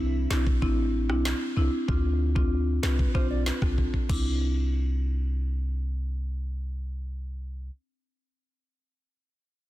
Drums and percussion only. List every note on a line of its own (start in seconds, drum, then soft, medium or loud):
0.31 snare loud
0.31 clap medium
0.47 kick medium
0.62 kick medium
1.10 cross-stick medium
1.25 snare loud
1.25 clap medium
1.89 kick loud
2.36 kick medium
2.83 snare loud
2.83 clap medium
2.99 kick medium
3.15 kick medium
3.46 snare loud
3.46 clap medium
3.62 kick medium
3.62 cross-stick medium
3.78 kick medium
3.94 kick medium
4.10 kick loud
4.10 crash medium